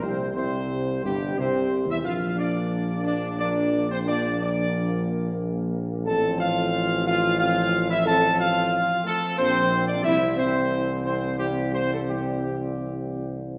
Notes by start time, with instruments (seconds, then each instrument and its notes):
0.02 tuba C2, trombone section C3, french horn section C4, trumpet section C5
0.36 tuba C2, trombone section C3, french horn section C4, trumpet section C5
1.03 tuba G1, trombone section G2, french horn section G3, trumpet section G4
1.37 tuba C2, trombone section C3, french horn section C4, trumpet section C5
1.87 tuba E2, trombone section E3, french horn section E4, trumpet section E5
2.03 tuba A#1, trombone section F3 A#3, french horn section F4, trumpet section F5
2.36 french horn section D4, trumpet section D5
3.03 french horn section D4, trumpet section D5
3.39 trombone section F3 A#3, french horn section D4, trumpet section D5
3.89 french horn section C4, trumpet section C5
4.05 trombone section F3 A#3, french horn section D4, trumpet section D5
4.39 french horn section D4, trumpet section D5
6.05 tuba A1, trombone section F3 C4, french horn section A4, trumpet section A5
6.39 french horn section F4, trumpet section F5
7.05 french horn section F4, trumpet section F5
7.38 trombone section F3 C4, french horn section F4, trumpet section F5
7.89 french horn section E4, trumpet section E5
8.05 trombone section F3 C4, french horn section A4, trumpet section A5
8.38 french horn section F4, trumpet section F5
9.04 french horn section A3, trumpet section A4
9.37 tuba A#1, trombone section F3 C4, french horn section C4, trumpet section C5
9.87 french horn section D4, trumpet section D5
10.03 tuba C2, trombone section E3 C4, french horn section E4, trumpet section E5
10.37 french horn section C4, trumpet section C5
11.04 french horn section C4, trumpet section C5
11.37 trombone section E3 C4, french horn section G3, trumpet section G4
11.73 french horn section C4, trumpet section C5
11.90 french horn section A3, trumpet section A4
12.07 trombone section E3 C4, french horn section G3, trumpet section G4